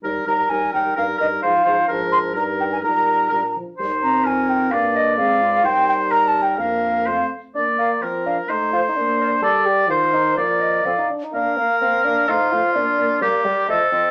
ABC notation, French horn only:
X:1
M:2/4
L:1/8
Q:1/4=128
K:Eb
V:1 name="French horn" clef=bass
G, G, G, G, | G, G, F, F, | F,2 G,2 | G,2 G, F, |
G, C3 | B,2 A,2 | [K:Bb] G,4 | B,2 A, z |
B,2 F,2 | A,2 B,2 | G,2 E,2 | F,2 F, z |
B, B, B, B, | A, A, B, B, | G, G, F, F, |]